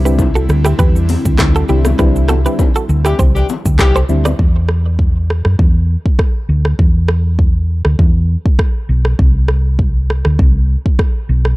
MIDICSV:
0, 0, Header, 1, 7, 480
1, 0, Start_track
1, 0, Tempo, 600000
1, 1592, Time_signature, 4, 2, 24, 8
1, 9255, End_track
2, 0, Start_track
2, 0, Title_t, "Clean electric guitar"
2, 0, Program_c, 0, 27
2, 43, Note_on_c, 0, 71, 79
2, 49, Note_on_c, 0, 67, 63
2, 110, Note_off_c, 0, 71, 0
2, 114, Note_off_c, 0, 67, 0
2, 284, Note_on_c, 0, 69, 82
2, 290, Note_on_c, 0, 66, 63
2, 350, Note_off_c, 0, 69, 0
2, 355, Note_off_c, 0, 66, 0
2, 524, Note_on_c, 0, 67, 72
2, 531, Note_on_c, 0, 64, 56
2, 591, Note_off_c, 0, 67, 0
2, 595, Note_off_c, 0, 64, 0
2, 632, Note_on_c, 0, 71, 89
2, 639, Note_on_c, 0, 67, 74
2, 780, Note_off_c, 0, 71, 0
2, 785, Note_off_c, 0, 67, 0
2, 1246, Note_on_c, 0, 69, 81
2, 1252, Note_on_c, 0, 66, 60
2, 1312, Note_off_c, 0, 69, 0
2, 1316, Note_off_c, 0, 66, 0
2, 1354, Note_on_c, 0, 67, 82
2, 1360, Note_on_c, 0, 64, 64
2, 1434, Note_off_c, 0, 67, 0
2, 1439, Note_off_c, 0, 64, 0
2, 1593, Note_on_c, 0, 71, 82
2, 1599, Note_on_c, 0, 67, 64
2, 1674, Note_off_c, 0, 71, 0
2, 1678, Note_off_c, 0, 67, 0
2, 1834, Note_on_c, 0, 69, 88
2, 1840, Note_on_c, 0, 66, 70
2, 1915, Note_off_c, 0, 69, 0
2, 1919, Note_off_c, 0, 66, 0
2, 1966, Note_on_c, 0, 71, 73
2, 1973, Note_on_c, 0, 67, 59
2, 2032, Note_off_c, 0, 71, 0
2, 2037, Note_off_c, 0, 67, 0
2, 2206, Note_on_c, 0, 69, 76
2, 2213, Note_on_c, 0, 66, 62
2, 2272, Note_off_c, 0, 69, 0
2, 2277, Note_off_c, 0, 66, 0
2, 2447, Note_on_c, 0, 67, 85
2, 2453, Note_on_c, 0, 64, 63
2, 2512, Note_off_c, 0, 67, 0
2, 2517, Note_off_c, 0, 64, 0
2, 2555, Note_on_c, 0, 72, 84
2, 2561, Note_on_c, 0, 67, 61
2, 2702, Note_off_c, 0, 72, 0
2, 2706, Note_off_c, 0, 67, 0
2, 3166, Note_on_c, 0, 72, 77
2, 3172, Note_on_c, 0, 69, 59
2, 3232, Note_off_c, 0, 72, 0
2, 3236, Note_off_c, 0, 69, 0
2, 3404, Note_on_c, 0, 74, 75
2, 3412, Note_on_c, 0, 71, 61
2, 3471, Note_off_c, 0, 74, 0
2, 3476, Note_off_c, 0, 71, 0
2, 9255, End_track
3, 0, Start_track
3, 0, Title_t, "Synth keys"
3, 0, Program_c, 1, 88
3, 41, Note_on_c, 1, 55, 78
3, 43, Note_on_c, 1, 60, 72
3, 44, Note_on_c, 1, 62, 68
3, 46, Note_on_c, 1, 64, 85
3, 217, Note_off_c, 1, 55, 0
3, 217, Note_off_c, 1, 60, 0
3, 218, Note_off_c, 1, 62, 0
3, 219, Note_off_c, 1, 64, 0
3, 1350, Note_on_c, 1, 55, 75
3, 1352, Note_on_c, 1, 60, 68
3, 1354, Note_on_c, 1, 62, 73
3, 1355, Note_on_c, 1, 64, 84
3, 1537, Note_off_c, 1, 55, 0
3, 1538, Note_off_c, 1, 60, 0
3, 1539, Note_off_c, 1, 62, 0
3, 1539, Note_off_c, 1, 64, 0
3, 1589, Note_on_c, 1, 55, 93
3, 1590, Note_on_c, 1, 60, 83
3, 1591, Note_on_c, 1, 62, 84
3, 1593, Note_on_c, 1, 64, 101
3, 1931, Note_off_c, 1, 55, 0
3, 1931, Note_off_c, 1, 60, 0
3, 1932, Note_off_c, 1, 62, 0
3, 1933, Note_off_c, 1, 64, 0
3, 1962, Note_on_c, 1, 55, 79
3, 1964, Note_on_c, 1, 60, 70
3, 1966, Note_on_c, 1, 62, 70
3, 1967, Note_on_c, 1, 64, 85
3, 2137, Note_off_c, 1, 55, 0
3, 2138, Note_off_c, 1, 60, 0
3, 2139, Note_off_c, 1, 62, 0
3, 2140, Note_off_c, 1, 64, 0
3, 3271, Note_on_c, 1, 55, 77
3, 3273, Note_on_c, 1, 60, 68
3, 3274, Note_on_c, 1, 62, 67
3, 3276, Note_on_c, 1, 64, 86
3, 3457, Note_off_c, 1, 55, 0
3, 3458, Note_off_c, 1, 60, 0
3, 3459, Note_off_c, 1, 62, 0
3, 3460, Note_off_c, 1, 64, 0
3, 9255, End_track
4, 0, Start_track
4, 0, Title_t, "Horn section"
4, 0, Program_c, 2, 61
4, 2444, Note_on_c, 2, 52, 85
4, 2444, Note_on_c, 2, 55, 87
4, 2444, Note_on_c, 2, 67, 94
4, 2445, Note_on_c, 2, 62, 81
4, 2536, Note_off_c, 2, 52, 0
4, 2536, Note_off_c, 2, 55, 0
4, 2536, Note_off_c, 2, 62, 0
4, 2536, Note_off_c, 2, 67, 0
4, 2684, Note_on_c, 2, 52, 82
4, 2685, Note_on_c, 2, 55, 84
4, 2685, Note_on_c, 2, 62, 83
4, 2685, Note_on_c, 2, 67, 91
4, 2776, Note_off_c, 2, 52, 0
4, 2776, Note_off_c, 2, 55, 0
4, 2776, Note_off_c, 2, 62, 0
4, 2776, Note_off_c, 2, 67, 0
4, 3032, Note_on_c, 2, 52, 98
4, 3032, Note_on_c, 2, 55, 100
4, 3032, Note_on_c, 2, 67, 108
4, 3033, Note_on_c, 2, 62, 96
4, 3185, Note_off_c, 2, 52, 0
4, 3185, Note_off_c, 2, 55, 0
4, 3185, Note_off_c, 2, 67, 0
4, 3186, Note_off_c, 2, 62, 0
4, 9255, End_track
5, 0, Start_track
5, 0, Title_t, "Analog synth pad"
5, 0, Program_c, 3, 89
5, 0, Note_on_c, 3, 50, 79
5, 0, Note_on_c, 3, 55, 77
5, 0, Note_on_c, 3, 60, 75
5, 0, Note_on_c, 3, 64, 91
5, 3478, Note_off_c, 3, 64, 0
5, 3479, Note_off_c, 3, 50, 0
5, 3479, Note_off_c, 3, 55, 0
5, 3479, Note_off_c, 3, 60, 0
5, 9255, End_track
6, 0, Start_track
6, 0, Title_t, "Fingered electric bass"
6, 0, Program_c, 4, 33
6, 0, Note_on_c, 4, 36, 110
6, 359, Note_off_c, 4, 36, 0
6, 392, Note_on_c, 4, 38, 92
6, 577, Note_off_c, 4, 38, 0
6, 630, Note_on_c, 4, 40, 98
6, 918, Note_off_c, 4, 40, 0
6, 1003, Note_on_c, 4, 38, 91
6, 1086, Note_off_c, 4, 38, 0
6, 1110, Note_on_c, 4, 38, 91
6, 1296, Note_off_c, 4, 38, 0
6, 1354, Note_on_c, 4, 36, 90
6, 1538, Note_off_c, 4, 36, 0
6, 1591, Note_on_c, 4, 36, 102
6, 1961, Note_off_c, 4, 36, 0
6, 2313, Note_on_c, 4, 38, 95
6, 2498, Note_off_c, 4, 38, 0
6, 2552, Note_on_c, 4, 36, 103
6, 2737, Note_off_c, 4, 36, 0
6, 2925, Note_on_c, 4, 38, 94
6, 3008, Note_off_c, 4, 38, 0
6, 3031, Note_on_c, 4, 36, 102
6, 3216, Note_off_c, 4, 36, 0
6, 3271, Note_on_c, 4, 38, 86
6, 3456, Note_off_c, 4, 38, 0
6, 3513, Note_on_c, 4, 40, 101
6, 4332, Note_off_c, 4, 40, 0
6, 4364, Note_on_c, 4, 42, 90
6, 4447, Note_off_c, 4, 42, 0
6, 4473, Note_on_c, 4, 40, 110
6, 4759, Note_off_c, 4, 40, 0
6, 5191, Note_on_c, 4, 38, 85
6, 5376, Note_off_c, 4, 38, 0
6, 5432, Note_on_c, 4, 40, 107
6, 6252, Note_off_c, 4, 40, 0
6, 6283, Note_on_c, 4, 38, 89
6, 6367, Note_off_c, 4, 38, 0
6, 6391, Note_on_c, 4, 40, 109
6, 6678, Note_off_c, 4, 40, 0
6, 7112, Note_on_c, 4, 35, 92
6, 7297, Note_off_c, 4, 35, 0
6, 7352, Note_on_c, 4, 36, 106
6, 8172, Note_off_c, 4, 36, 0
6, 8205, Note_on_c, 4, 38, 88
6, 8288, Note_off_c, 4, 38, 0
6, 8313, Note_on_c, 4, 36, 109
6, 8599, Note_off_c, 4, 36, 0
6, 9033, Note_on_c, 4, 35, 87
6, 9218, Note_off_c, 4, 35, 0
6, 9255, End_track
7, 0, Start_track
7, 0, Title_t, "Drums"
7, 46, Note_on_c, 9, 82, 91
7, 126, Note_off_c, 9, 82, 0
7, 148, Note_on_c, 9, 60, 76
7, 149, Note_on_c, 9, 36, 91
7, 152, Note_on_c, 9, 82, 67
7, 228, Note_off_c, 9, 60, 0
7, 229, Note_off_c, 9, 36, 0
7, 232, Note_off_c, 9, 82, 0
7, 285, Note_on_c, 9, 82, 56
7, 365, Note_off_c, 9, 82, 0
7, 392, Note_on_c, 9, 82, 51
7, 399, Note_on_c, 9, 37, 83
7, 472, Note_off_c, 9, 82, 0
7, 479, Note_off_c, 9, 37, 0
7, 516, Note_on_c, 9, 37, 99
7, 523, Note_on_c, 9, 82, 96
7, 596, Note_off_c, 9, 37, 0
7, 603, Note_off_c, 9, 82, 0
7, 630, Note_on_c, 9, 36, 118
7, 632, Note_on_c, 9, 82, 83
7, 635, Note_on_c, 9, 64, 82
7, 710, Note_off_c, 9, 36, 0
7, 712, Note_off_c, 9, 82, 0
7, 715, Note_off_c, 9, 64, 0
7, 768, Note_on_c, 9, 82, 51
7, 848, Note_off_c, 9, 82, 0
7, 871, Note_on_c, 9, 46, 60
7, 871, Note_on_c, 9, 82, 57
7, 877, Note_on_c, 9, 61, 85
7, 951, Note_off_c, 9, 46, 0
7, 951, Note_off_c, 9, 82, 0
7, 957, Note_off_c, 9, 61, 0
7, 1003, Note_on_c, 9, 36, 100
7, 1003, Note_on_c, 9, 82, 108
7, 1083, Note_off_c, 9, 36, 0
7, 1083, Note_off_c, 9, 82, 0
7, 1109, Note_on_c, 9, 36, 106
7, 1110, Note_on_c, 9, 37, 106
7, 1110, Note_on_c, 9, 39, 104
7, 1111, Note_on_c, 9, 82, 79
7, 1122, Note_on_c, 9, 60, 73
7, 1189, Note_off_c, 9, 36, 0
7, 1190, Note_off_c, 9, 37, 0
7, 1190, Note_off_c, 9, 39, 0
7, 1191, Note_off_c, 9, 82, 0
7, 1202, Note_off_c, 9, 60, 0
7, 1244, Note_on_c, 9, 82, 56
7, 1324, Note_off_c, 9, 82, 0
7, 1349, Note_on_c, 9, 82, 44
7, 1356, Note_on_c, 9, 64, 68
7, 1429, Note_off_c, 9, 82, 0
7, 1436, Note_off_c, 9, 64, 0
7, 1478, Note_on_c, 9, 37, 96
7, 1480, Note_on_c, 9, 82, 95
7, 1489, Note_on_c, 9, 61, 78
7, 1558, Note_off_c, 9, 37, 0
7, 1560, Note_off_c, 9, 82, 0
7, 1569, Note_off_c, 9, 61, 0
7, 1591, Note_on_c, 9, 36, 124
7, 1591, Note_on_c, 9, 37, 100
7, 1591, Note_on_c, 9, 82, 75
7, 1598, Note_on_c, 9, 64, 85
7, 1671, Note_off_c, 9, 36, 0
7, 1671, Note_off_c, 9, 37, 0
7, 1671, Note_off_c, 9, 82, 0
7, 1678, Note_off_c, 9, 64, 0
7, 1726, Note_on_c, 9, 82, 55
7, 1806, Note_off_c, 9, 82, 0
7, 1827, Note_on_c, 9, 37, 99
7, 1830, Note_on_c, 9, 82, 58
7, 1838, Note_on_c, 9, 61, 62
7, 1907, Note_off_c, 9, 37, 0
7, 1910, Note_off_c, 9, 82, 0
7, 1918, Note_off_c, 9, 61, 0
7, 1967, Note_on_c, 9, 82, 92
7, 2047, Note_off_c, 9, 82, 0
7, 2071, Note_on_c, 9, 36, 95
7, 2073, Note_on_c, 9, 60, 77
7, 2073, Note_on_c, 9, 82, 65
7, 2151, Note_off_c, 9, 36, 0
7, 2153, Note_off_c, 9, 60, 0
7, 2153, Note_off_c, 9, 82, 0
7, 2206, Note_on_c, 9, 82, 57
7, 2286, Note_off_c, 9, 82, 0
7, 2314, Note_on_c, 9, 82, 48
7, 2394, Note_off_c, 9, 82, 0
7, 2437, Note_on_c, 9, 37, 94
7, 2444, Note_on_c, 9, 82, 99
7, 2517, Note_off_c, 9, 37, 0
7, 2524, Note_off_c, 9, 82, 0
7, 2552, Note_on_c, 9, 36, 119
7, 2554, Note_on_c, 9, 82, 83
7, 2558, Note_on_c, 9, 64, 84
7, 2632, Note_off_c, 9, 36, 0
7, 2634, Note_off_c, 9, 82, 0
7, 2638, Note_off_c, 9, 64, 0
7, 2688, Note_on_c, 9, 82, 55
7, 2768, Note_off_c, 9, 82, 0
7, 2793, Note_on_c, 9, 82, 57
7, 2798, Note_on_c, 9, 61, 90
7, 2873, Note_off_c, 9, 82, 0
7, 2878, Note_off_c, 9, 61, 0
7, 2925, Note_on_c, 9, 36, 98
7, 2925, Note_on_c, 9, 82, 102
7, 3005, Note_off_c, 9, 36, 0
7, 3005, Note_off_c, 9, 82, 0
7, 3031, Note_on_c, 9, 36, 106
7, 3033, Note_on_c, 9, 37, 102
7, 3033, Note_on_c, 9, 39, 101
7, 3034, Note_on_c, 9, 82, 76
7, 3043, Note_on_c, 9, 60, 75
7, 3111, Note_off_c, 9, 36, 0
7, 3113, Note_off_c, 9, 37, 0
7, 3113, Note_off_c, 9, 39, 0
7, 3114, Note_off_c, 9, 82, 0
7, 3123, Note_off_c, 9, 60, 0
7, 3167, Note_on_c, 9, 82, 58
7, 3247, Note_off_c, 9, 82, 0
7, 3272, Note_on_c, 9, 82, 43
7, 3276, Note_on_c, 9, 64, 68
7, 3352, Note_off_c, 9, 82, 0
7, 3356, Note_off_c, 9, 64, 0
7, 3401, Note_on_c, 9, 37, 96
7, 3403, Note_on_c, 9, 82, 97
7, 3410, Note_on_c, 9, 61, 83
7, 3481, Note_off_c, 9, 37, 0
7, 3483, Note_off_c, 9, 82, 0
7, 3490, Note_off_c, 9, 61, 0
7, 3513, Note_on_c, 9, 36, 118
7, 3593, Note_off_c, 9, 36, 0
7, 3748, Note_on_c, 9, 37, 90
7, 3828, Note_off_c, 9, 37, 0
7, 3991, Note_on_c, 9, 36, 93
7, 4071, Note_off_c, 9, 36, 0
7, 4242, Note_on_c, 9, 37, 82
7, 4322, Note_off_c, 9, 37, 0
7, 4359, Note_on_c, 9, 37, 88
7, 4439, Note_off_c, 9, 37, 0
7, 4473, Note_on_c, 9, 36, 116
7, 4553, Note_off_c, 9, 36, 0
7, 4845, Note_on_c, 9, 36, 98
7, 4925, Note_off_c, 9, 36, 0
7, 4951, Note_on_c, 9, 36, 100
7, 4953, Note_on_c, 9, 37, 99
7, 5031, Note_off_c, 9, 36, 0
7, 5033, Note_off_c, 9, 37, 0
7, 5320, Note_on_c, 9, 37, 93
7, 5400, Note_off_c, 9, 37, 0
7, 5432, Note_on_c, 9, 36, 118
7, 5512, Note_off_c, 9, 36, 0
7, 5667, Note_on_c, 9, 37, 97
7, 5747, Note_off_c, 9, 37, 0
7, 5910, Note_on_c, 9, 36, 90
7, 5990, Note_off_c, 9, 36, 0
7, 6278, Note_on_c, 9, 37, 94
7, 6358, Note_off_c, 9, 37, 0
7, 6392, Note_on_c, 9, 36, 118
7, 6472, Note_off_c, 9, 36, 0
7, 6764, Note_on_c, 9, 36, 100
7, 6844, Note_off_c, 9, 36, 0
7, 6870, Note_on_c, 9, 36, 100
7, 6873, Note_on_c, 9, 37, 99
7, 6950, Note_off_c, 9, 36, 0
7, 6953, Note_off_c, 9, 37, 0
7, 7239, Note_on_c, 9, 37, 95
7, 7319, Note_off_c, 9, 37, 0
7, 7352, Note_on_c, 9, 36, 120
7, 7432, Note_off_c, 9, 36, 0
7, 7587, Note_on_c, 9, 37, 94
7, 7667, Note_off_c, 9, 37, 0
7, 7831, Note_on_c, 9, 36, 90
7, 7911, Note_off_c, 9, 36, 0
7, 8081, Note_on_c, 9, 37, 80
7, 8161, Note_off_c, 9, 37, 0
7, 8199, Note_on_c, 9, 37, 91
7, 8279, Note_off_c, 9, 37, 0
7, 8313, Note_on_c, 9, 36, 119
7, 8393, Note_off_c, 9, 36, 0
7, 8686, Note_on_c, 9, 36, 94
7, 8766, Note_off_c, 9, 36, 0
7, 8792, Note_on_c, 9, 36, 97
7, 8793, Note_on_c, 9, 37, 99
7, 8872, Note_off_c, 9, 36, 0
7, 8873, Note_off_c, 9, 37, 0
7, 9160, Note_on_c, 9, 37, 94
7, 9240, Note_off_c, 9, 37, 0
7, 9255, End_track
0, 0, End_of_file